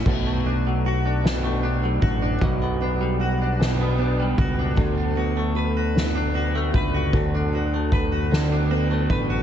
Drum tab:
CC |x-----|------|------|------|
RD |-xxxxx|-xxxxx|xxxxxx|xxxxxx|
SD |---o--|---o--|---o--|---o--|
BD |o----o|o----o|o----o|o-o--o|